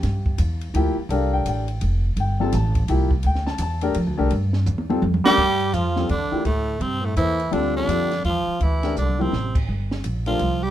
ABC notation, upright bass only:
X:1
M:3/4
L:1/8
Q:"Swing" 1/4=168
K:Gdor
V:1 name="Upright bass" clef=bass
G,,2 E,,2 D,, z | C,,2 A,,,2 F,,,2 | G,,,2 A,,,2 C,,2 | D,,2 E,,2 (3F,, D,, C,, |
G,,2 E,,2 F,, z | G,,2 F,,2 E,, z | D,,2 G,,2 E,,2 | D,,2 F,,2 E,, z |
D,,2 C,,2 A,,,2 | G,,,2 B,,,2 C,,2 |]